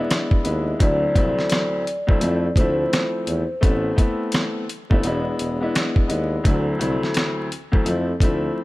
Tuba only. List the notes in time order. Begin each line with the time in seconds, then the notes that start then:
0.45 D#2
0.80 D2
1.16 C2
2.22 F2
2.56 D2
3.27 E2
3.63 A1
4.91 G1
5.04 E1
5.39 E1
6.10 D#2
6.45 D2
6.80 C2
7.86 F2
8.20 D2